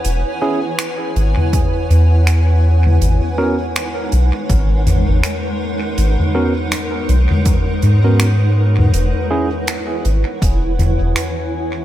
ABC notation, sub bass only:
X:1
M:4/4
L:1/16
Q:"Swing 16ths" 1/4=81
K:G#m
V:1 name="Sub bass" clef=bass
E,,, z4 z G,,, z3 E,,6 | G,,, z4 z B,,, z G,,,3 G,,, z4 | G,,, z4 z B,,, z3 G,,6 | E,,, z4 z G,,, z E,,,3 E,,, z4 |]